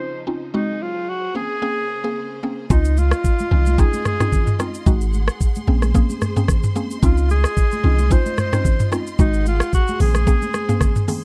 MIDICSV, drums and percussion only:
0, 0, Header, 1, 2, 480
1, 0, Start_track
1, 0, Key_signature, -5, "major"
1, 0, Tempo, 540541
1, 481, Time_signature, 4, 2, 24, 8
1, 9981, End_track
2, 0, Start_track
2, 0, Title_t, "Drums"
2, 2400, Note_on_c, 9, 36, 115
2, 2400, Note_on_c, 9, 82, 71
2, 2488, Note_off_c, 9, 36, 0
2, 2489, Note_off_c, 9, 82, 0
2, 2529, Note_on_c, 9, 82, 58
2, 2618, Note_off_c, 9, 82, 0
2, 2639, Note_on_c, 9, 82, 51
2, 2645, Note_on_c, 9, 63, 57
2, 2728, Note_off_c, 9, 82, 0
2, 2734, Note_off_c, 9, 63, 0
2, 2765, Note_on_c, 9, 37, 118
2, 2773, Note_on_c, 9, 82, 59
2, 2854, Note_off_c, 9, 37, 0
2, 2862, Note_off_c, 9, 82, 0
2, 2880, Note_on_c, 9, 36, 101
2, 2882, Note_on_c, 9, 82, 90
2, 2969, Note_off_c, 9, 36, 0
2, 2971, Note_off_c, 9, 82, 0
2, 3010, Note_on_c, 9, 82, 55
2, 3023, Note_on_c, 9, 63, 80
2, 3099, Note_off_c, 9, 82, 0
2, 3111, Note_off_c, 9, 63, 0
2, 3130, Note_on_c, 9, 64, 79
2, 3218, Note_off_c, 9, 64, 0
2, 3250, Note_on_c, 9, 82, 61
2, 3260, Note_on_c, 9, 63, 83
2, 3339, Note_off_c, 9, 82, 0
2, 3349, Note_off_c, 9, 63, 0
2, 3359, Note_on_c, 9, 36, 103
2, 3361, Note_on_c, 9, 82, 73
2, 3448, Note_off_c, 9, 36, 0
2, 3450, Note_off_c, 9, 82, 0
2, 3493, Note_on_c, 9, 82, 57
2, 3496, Note_on_c, 9, 63, 82
2, 3582, Note_off_c, 9, 82, 0
2, 3585, Note_off_c, 9, 63, 0
2, 3598, Note_on_c, 9, 82, 53
2, 3600, Note_on_c, 9, 37, 95
2, 3601, Note_on_c, 9, 45, 70
2, 3604, Note_on_c, 9, 63, 85
2, 3687, Note_off_c, 9, 82, 0
2, 3689, Note_off_c, 9, 37, 0
2, 3690, Note_off_c, 9, 45, 0
2, 3693, Note_off_c, 9, 63, 0
2, 3732, Note_on_c, 9, 45, 97
2, 3733, Note_on_c, 9, 37, 95
2, 3734, Note_on_c, 9, 82, 53
2, 3821, Note_off_c, 9, 45, 0
2, 3822, Note_off_c, 9, 37, 0
2, 3823, Note_off_c, 9, 82, 0
2, 3839, Note_on_c, 9, 36, 94
2, 3841, Note_on_c, 9, 64, 89
2, 3841, Note_on_c, 9, 82, 86
2, 3928, Note_off_c, 9, 36, 0
2, 3930, Note_off_c, 9, 64, 0
2, 3930, Note_off_c, 9, 82, 0
2, 3969, Note_on_c, 9, 82, 51
2, 3971, Note_on_c, 9, 45, 97
2, 4058, Note_off_c, 9, 82, 0
2, 4060, Note_off_c, 9, 45, 0
2, 4081, Note_on_c, 9, 82, 59
2, 4082, Note_on_c, 9, 63, 72
2, 4083, Note_on_c, 9, 37, 101
2, 4170, Note_off_c, 9, 63, 0
2, 4170, Note_off_c, 9, 82, 0
2, 4172, Note_off_c, 9, 37, 0
2, 4212, Note_on_c, 9, 82, 57
2, 4300, Note_off_c, 9, 82, 0
2, 4320, Note_on_c, 9, 36, 118
2, 4321, Note_on_c, 9, 82, 75
2, 4409, Note_off_c, 9, 36, 0
2, 4409, Note_off_c, 9, 82, 0
2, 4450, Note_on_c, 9, 82, 54
2, 4539, Note_off_c, 9, 82, 0
2, 4560, Note_on_c, 9, 82, 51
2, 4565, Note_on_c, 9, 63, 58
2, 4649, Note_off_c, 9, 82, 0
2, 4654, Note_off_c, 9, 63, 0
2, 4685, Note_on_c, 9, 37, 123
2, 4693, Note_on_c, 9, 82, 57
2, 4774, Note_off_c, 9, 37, 0
2, 4782, Note_off_c, 9, 82, 0
2, 4801, Note_on_c, 9, 36, 104
2, 4802, Note_on_c, 9, 82, 92
2, 4890, Note_off_c, 9, 36, 0
2, 4891, Note_off_c, 9, 82, 0
2, 4930, Note_on_c, 9, 82, 54
2, 4943, Note_on_c, 9, 63, 82
2, 5019, Note_off_c, 9, 82, 0
2, 5032, Note_off_c, 9, 63, 0
2, 5170, Note_on_c, 9, 37, 94
2, 5172, Note_on_c, 9, 82, 59
2, 5180, Note_on_c, 9, 63, 84
2, 5259, Note_off_c, 9, 37, 0
2, 5260, Note_off_c, 9, 82, 0
2, 5269, Note_off_c, 9, 63, 0
2, 5280, Note_on_c, 9, 36, 107
2, 5282, Note_on_c, 9, 82, 71
2, 5369, Note_off_c, 9, 36, 0
2, 5371, Note_off_c, 9, 82, 0
2, 5414, Note_on_c, 9, 63, 80
2, 5414, Note_on_c, 9, 82, 58
2, 5502, Note_off_c, 9, 82, 0
2, 5503, Note_off_c, 9, 63, 0
2, 5520, Note_on_c, 9, 82, 53
2, 5521, Note_on_c, 9, 37, 93
2, 5522, Note_on_c, 9, 45, 70
2, 5523, Note_on_c, 9, 63, 91
2, 5608, Note_off_c, 9, 82, 0
2, 5610, Note_off_c, 9, 37, 0
2, 5611, Note_off_c, 9, 45, 0
2, 5612, Note_off_c, 9, 63, 0
2, 5653, Note_on_c, 9, 45, 98
2, 5655, Note_on_c, 9, 82, 54
2, 5741, Note_off_c, 9, 45, 0
2, 5744, Note_off_c, 9, 82, 0
2, 5757, Note_on_c, 9, 37, 100
2, 5760, Note_on_c, 9, 36, 99
2, 5760, Note_on_c, 9, 64, 85
2, 5763, Note_on_c, 9, 82, 85
2, 5846, Note_off_c, 9, 37, 0
2, 5848, Note_off_c, 9, 64, 0
2, 5849, Note_off_c, 9, 36, 0
2, 5851, Note_off_c, 9, 82, 0
2, 5891, Note_on_c, 9, 82, 51
2, 5893, Note_on_c, 9, 45, 93
2, 5980, Note_off_c, 9, 82, 0
2, 5982, Note_off_c, 9, 45, 0
2, 6000, Note_on_c, 9, 63, 74
2, 6003, Note_on_c, 9, 82, 64
2, 6089, Note_off_c, 9, 63, 0
2, 6091, Note_off_c, 9, 82, 0
2, 6133, Note_on_c, 9, 82, 59
2, 6222, Note_off_c, 9, 82, 0
2, 6241, Note_on_c, 9, 36, 114
2, 6241, Note_on_c, 9, 82, 72
2, 6329, Note_off_c, 9, 36, 0
2, 6330, Note_off_c, 9, 82, 0
2, 6370, Note_on_c, 9, 82, 56
2, 6459, Note_off_c, 9, 82, 0
2, 6480, Note_on_c, 9, 82, 53
2, 6485, Note_on_c, 9, 63, 56
2, 6569, Note_off_c, 9, 82, 0
2, 6574, Note_off_c, 9, 63, 0
2, 6606, Note_on_c, 9, 37, 125
2, 6614, Note_on_c, 9, 82, 62
2, 6695, Note_off_c, 9, 37, 0
2, 6703, Note_off_c, 9, 82, 0
2, 6721, Note_on_c, 9, 36, 105
2, 6722, Note_on_c, 9, 82, 90
2, 6810, Note_off_c, 9, 36, 0
2, 6811, Note_off_c, 9, 82, 0
2, 6851, Note_on_c, 9, 82, 51
2, 6863, Note_on_c, 9, 63, 80
2, 6940, Note_off_c, 9, 82, 0
2, 6952, Note_off_c, 9, 63, 0
2, 6970, Note_on_c, 9, 64, 81
2, 7058, Note_off_c, 9, 64, 0
2, 7091, Note_on_c, 9, 82, 61
2, 7100, Note_on_c, 9, 63, 88
2, 7180, Note_off_c, 9, 82, 0
2, 7189, Note_off_c, 9, 63, 0
2, 7200, Note_on_c, 9, 36, 103
2, 7201, Note_on_c, 9, 82, 72
2, 7289, Note_off_c, 9, 36, 0
2, 7290, Note_off_c, 9, 82, 0
2, 7334, Note_on_c, 9, 82, 54
2, 7335, Note_on_c, 9, 63, 86
2, 7423, Note_off_c, 9, 82, 0
2, 7424, Note_off_c, 9, 63, 0
2, 7440, Note_on_c, 9, 82, 52
2, 7441, Note_on_c, 9, 37, 96
2, 7442, Note_on_c, 9, 45, 72
2, 7443, Note_on_c, 9, 63, 87
2, 7528, Note_off_c, 9, 82, 0
2, 7530, Note_off_c, 9, 37, 0
2, 7531, Note_off_c, 9, 45, 0
2, 7532, Note_off_c, 9, 63, 0
2, 7573, Note_on_c, 9, 45, 99
2, 7575, Note_on_c, 9, 37, 96
2, 7576, Note_on_c, 9, 82, 55
2, 7662, Note_off_c, 9, 45, 0
2, 7663, Note_off_c, 9, 37, 0
2, 7664, Note_off_c, 9, 82, 0
2, 7680, Note_on_c, 9, 36, 100
2, 7681, Note_on_c, 9, 64, 85
2, 7683, Note_on_c, 9, 82, 87
2, 7769, Note_off_c, 9, 36, 0
2, 7770, Note_off_c, 9, 64, 0
2, 7772, Note_off_c, 9, 82, 0
2, 7811, Note_on_c, 9, 82, 51
2, 7814, Note_on_c, 9, 45, 99
2, 7900, Note_off_c, 9, 82, 0
2, 7902, Note_off_c, 9, 45, 0
2, 7921, Note_on_c, 9, 63, 73
2, 7923, Note_on_c, 9, 82, 61
2, 7925, Note_on_c, 9, 37, 101
2, 8010, Note_off_c, 9, 63, 0
2, 8012, Note_off_c, 9, 82, 0
2, 8014, Note_off_c, 9, 37, 0
2, 8053, Note_on_c, 9, 82, 56
2, 8142, Note_off_c, 9, 82, 0
2, 8161, Note_on_c, 9, 36, 118
2, 8162, Note_on_c, 9, 82, 75
2, 8250, Note_off_c, 9, 36, 0
2, 8250, Note_off_c, 9, 82, 0
2, 8291, Note_on_c, 9, 82, 59
2, 8380, Note_off_c, 9, 82, 0
2, 8401, Note_on_c, 9, 82, 56
2, 8405, Note_on_c, 9, 63, 57
2, 8490, Note_off_c, 9, 82, 0
2, 8494, Note_off_c, 9, 63, 0
2, 8526, Note_on_c, 9, 37, 119
2, 8534, Note_on_c, 9, 82, 62
2, 8615, Note_off_c, 9, 37, 0
2, 8623, Note_off_c, 9, 82, 0
2, 8641, Note_on_c, 9, 36, 103
2, 8642, Note_on_c, 9, 82, 88
2, 8730, Note_off_c, 9, 36, 0
2, 8731, Note_off_c, 9, 82, 0
2, 8771, Note_on_c, 9, 82, 53
2, 8782, Note_on_c, 9, 63, 81
2, 8859, Note_off_c, 9, 82, 0
2, 8871, Note_off_c, 9, 63, 0
2, 8880, Note_on_c, 9, 46, 72
2, 8880, Note_on_c, 9, 82, 53
2, 8890, Note_on_c, 9, 64, 83
2, 8969, Note_off_c, 9, 46, 0
2, 8969, Note_off_c, 9, 82, 0
2, 8978, Note_off_c, 9, 64, 0
2, 9010, Note_on_c, 9, 37, 98
2, 9011, Note_on_c, 9, 82, 62
2, 9020, Note_on_c, 9, 63, 84
2, 9099, Note_off_c, 9, 37, 0
2, 9100, Note_off_c, 9, 82, 0
2, 9109, Note_off_c, 9, 63, 0
2, 9120, Note_on_c, 9, 36, 106
2, 9121, Note_on_c, 9, 82, 71
2, 9208, Note_off_c, 9, 36, 0
2, 9210, Note_off_c, 9, 82, 0
2, 9253, Note_on_c, 9, 82, 59
2, 9255, Note_on_c, 9, 63, 84
2, 9342, Note_off_c, 9, 82, 0
2, 9344, Note_off_c, 9, 63, 0
2, 9359, Note_on_c, 9, 82, 52
2, 9360, Note_on_c, 9, 37, 96
2, 9363, Note_on_c, 9, 63, 89
2, 9447, Note_off_c, 9, 82, 0
2, 9449, Note_off_c, 9, 37, 0
2, 9452, Note_off_c, 9, 63, 0
2, 9493, Note_on_c, 9, 45, 95
2, 9495, Note_on_c, 9, 82, 56
2, 9582, Note_off_c, 9, 45, 0
2, 9584, Note_off_c, 9, 82, 0
2, 9596, Note_on_c, 9, 37, 99
2, 9599, Note_on_c, 9, 36, 98
2, 9601, Note_on_c, 9, 64, 85
2, 9602, Note_on_c, 9, 82, 85
2, 9685, Note_off_c, 9, 37, 0
2, 9688, Note_off_c, 9, 36, 0
2, 9690, Note_off_c, 9, 64, 0
2, 9691, Note_off_c, 9, 82, 0
2, 9730, Note_on_c, 9, 82, 51
2, 9732, Note_on_c, 9, 45, 95
2, 9819, Note_off_c, 9, 82, 0
2, 9821, Note_off_c, 9, 45, 0
2, 9841, Note_on_c, 9, 63, 74
2, 9841, Note_on_c, 9, 64, 71
2, 9842, Note_on_c, 9, 46, 84
2, 9842, Note_on_c, 9, 82, 63
2, 9930, Note_off_c, 9, 63, 0
2, 9930, Note_off_c, 9, 64, 0
2, 9931, Note_off_c, 9, 46, 0
2, 9931, Note_off_c, 9, 82, 0
2, 9981, End_track
0, 0, End_of_file